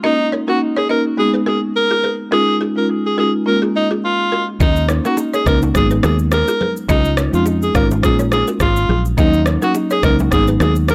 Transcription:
0.03 A#3 C#4 D#4 F#4 A#4 D#5
0.32 A#4 C#5
0.47 A#3 C#4 D#4 F#4 A#4
0.77 G#4 A#4 C#5
0.89 A#3 C#4 D#4 F#4 A#4 B4 D#5
1.17 G#3 B3 D#4 F#4 G#4
1.34 G#4 B4
1.46 F#4 G#4 A#4
1.76 A#4
1.91 F4 G#4
2.04 G#4 B4
2.31 G#3 C#4 D#4 F4 G#4 A#4
2.61 F4 G#4
2.76 G#3 C#4 D#4 F4 A#4
3.06 G#4
3.17 G#3 C#4 D#4 F4 F#4 G#4 A#4
3.46 G#3 A#3 C#4 F4 A#4
3.62 F4 G#4
3.76 D#4
3.91 F4 G#4
4.05 F4
4.32 F#4 A#4
4.60 D#2 A#3 C#4 D#4 F#4 A#4 D#5, kick, low conga, shaker
4.76 shaker
4.89 A#4 C#5, cross-stick, low bongo, shaker
5.04 A#3 C#4 D#4 F#4 A#4, low bongo, shaker
5.17 high bongo, shaker
5.34 G#4 A#4 C#5, shaker
5.46 C#2 A#3 C#4 D#4 F#4 A#4 B4 D#5, kick, cross-stick, shaker
5.62 low bongo, shaker
5.74 G#1 G#3 B3 D#4 F#4 G#4, kick, cross-stick, low conga, shaker
5.91 G#4 B4, shaker
6.03 D#2 F#4 G#4 A#4, cross-stick, high bongo, low bongo, shaker
6.19 shaker
6.32 A#4, cross-stick, high bongo, shaker
6.48 F4 G#4, shaker
6.61 G#4 B4, low conga
6.77 shaker
6.88 C#2 G#3 C#4 D#4 F4 G#4 D#5, kick, low conga, shaker
7.05 shaker
7.17 A#4 C#5, cross-stick, low bongo, shaker
7.33 F2 G#3 C#4 D#4 F4, low bongo, shaker
7.46 high bongo, shaker
7.62 G#4, shaker
7.74 G#1 G#3 C#4 D#4 F4 A#4 C#5 F5, kick, cross-stick, shaker
7.91 low bongo, shaker
8.03 A#1 G#3 A#3 C#4 F4 G#4, kick, cross-stick, low conga, shaker
8.19 A#4 C#5, shaker
8.32 G#4, cross-stick, high bongo, low bongo, shaker
8.47 F#4 A#4, shaker
8.60 G#1 F4, kick, cross-stick, high bongo, shaker
8.76 shaker
8.89 A#1 F4 G#4, low conga
9.05 shaker
9.17 D#2 F#3 A#3 C#4 D#4 A#4 D#5, kick, low conga, shaker
9.33 shaker
9.46 A#4 C#5, cross-stick, low bongo, shaker
9.61 F#3 A#3 C#4 D#4 F#4 A#4, low bongo, shaker
9.75 high bongo, shaker
9.90 G#4 A#4 C#5, shaker
10.03 C#2 F#3 A#3 C#4 D#4 A#4 B4 D#5, kick, cross-stick, shaker
10.19 low bongo, shaker
10.31 G#1 F#3 G#3 B3 D#4 G#4, kick, cross-stick, low conga, shaker
10.48 G#4 B4, shaker
10.60 D#2 F#4 G#4 A#4, cross-stick, high bongo, low bongo, shaker
10.76 shaker
10.88 A#4, cross-stick, high bongo, shaker

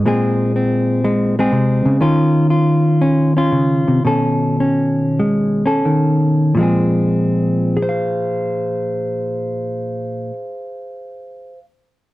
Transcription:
0.06 A#2 G#3 C4 G#4
0.56 C4
1.04 G#3
1.39 G#3 C4 G#4
1.52 C3
1.85 C#3
2.01 D#3 C#4 F4
2.50 F4
3.01 C#4
3.37 C#4 F4
3.52 C#3
3.88 C3
4.05 B2 C#4 A4
4.60 C#4
5.20 G#3
5.66 C#4 A4
5.85 D#3
6.55 A#2 F3
6.59 G#3 C4
6.63 G#4
7.77 G#4
7.82 C5
7.89 F5

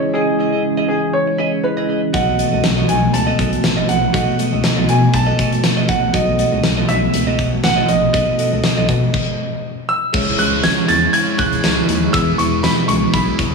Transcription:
Already playing: C#3 E3 G#3 C#4 E4 G#4 C#5 D#5
0.03 muted clean electric guitar stroke
0.13 E4 G#4 D#5
0.39 E4 G#4 D#5
0.52 E4 G#4 D#5
0.77 E4 G#4 D#5
0.88 E4 G#4 D#5
1.02 muted clean electric guitar stroke
1.13 C#5
1.27 muted clean electric guitar stroke
1.38 E4 G#4 D#5
1.52 muted clean electric guitar stroke
1.63 C#4 E4 G#4 B4 D#5, muted clean electric guitar stroke
1.77 E4 G#4 D#5
1.88 E4 G#4 D#5
2.02 muted clean electric guitar stroke
2.13 B1 B2 A3 B3 F#4 A4 D#5 F#5, kick, closed hi-hat
2.38 F#4 A4 D#5, closed hi-hat
2.52 C#2 F#4 A4 D#5
2.64 B1, snare, closed hi-hat
2.77 F#4 A4 D#5
2.88 B1 F#4 A4 D#5 G#5, closed hi-hat
3.02 muted clean electric guitar stroke
3.13 C#2 A5, muted clean electric guitar stroke, closed hi-hat
3.27 F#4 A4 D#5
3.38 B1 F#4 A4 D#5, kick, closed hi-hat
3.52 muted clean electric guitar stroke, closed hi-hat
3.63 A1, muted clean electric guitar stroke, snare, closed hi-hat
3.77 F#4 A4 D#5
3.88 A#1 F#5, muted clean electric guitar stroke, closed hi-hat
4.02 muted clean electric guitar stroke
4.13 B1 B2 B3 F#4 A4 D#5 F#5, kick, closed hi-hat
4.38 F#4 A4 D#5, closed hi-hat
4.52 C#2 F#4 A4 D#5
4.63 muted clean electric guitar stroke, snare, closed hi-hat
4.77 B1 F#4 A4 D#5
4.88 B2 F#4 A4 D#5 G#5, closed hi-hat
5.02 muted clean electric guitar stroke
5.13 B1 A5, muted clean electric guitar stroke, kick, closed hi-hat
5.27 F#4 A4 D#5
5.38 F#4 A4 D#5, kick, closed hi-hat
5.52 muted clean electric guitar stroke, closed hi-hat
5.63 muted clean electric guitar stroke, snare, closed hi-hat
5.77 F#4 A4 D#5
5.88 A#1 F#4 A4 D#5 F#5, kick, closed hi-hat
6.02 muted clean electric guitar stroke
6.13 B1 B2 B3 F#4 A4 D#5 F#5 G#5, kick, closed hi-hat
6.38 F#4 A4 D#5, closed hi-hat
6.52 C#2 F#4 A4 D#5
6.64 B1, snare, closed hi-hat
6.77 F#4 A4 D#5
6.89 B1 F#4 A4 D#5 E5, closed hi-hat
7.02 muted clean electric guitar stroke
7.13 C#2, muted clean electric guitar stroke, closed hi-hat
7.27 F#4 A4 D#5
7.38 B1 F#4 A4 D#5, kick, closed hi-hat
7.52 muted clean electric guitar stroke
7.63 A1 F#5, muted clean electric guitar stroke, snare, closed hi-hat
7.77 F#4 A4 D#5
7.88 A#1 D#5, muted clean electric guitar stroke, closed hi-hat
8.02 muted clean electric guitar stroke
8.13 B1 B2 B3 F#4 A4 D#5, kick, closed hi-hat
8.38 F#4 A4 D#5, closed hi-hat
8.52 C#2 F#4 A4 D#5
8.64 snare, closed hi-hat
8.77 B1 F#4 A4 D#5
8.88 B2 F#4 A4 D#5, kick, closed hi-hat
9.02 muted clean electric guitar stroke
9.14 kick, crash
9.89 E6
10.13 C#2 C#3 E3 G#3 C#4 E4 G#4 C#5 E5, kick, crash
10.38 C#2 G#3 C#4 F#6, closed hi-hat
10.63 G#6, snare, closed hi-hat, tambourine
10.88 E2 A6, closed hi-hat
11.13 C#3 G#3 C#4 G#6, closed hi-hat
11.38 C#2 F#6, kick, closed hi-hat
11.53 closed hi-hat
11.63 C#2 C#3 G#3 C#4, snare, closed hi-hat, tambourine
11.89 D#2, closed hi-hat
12.12 E2 B2 E3 B3 G#4 B4 E5 E6, kick, closed hi-hat
12.17 E4
12.38 E2 C#6, closed hi-hat
12.63 B5, snare, closed hi-hat, tambourine
12.88 C#2 C#6, closed hi-hat
13.13 B1 E3 B3 E4 B5, kick, closed hi-hat
13.39 E2, kick, closed hi-hat

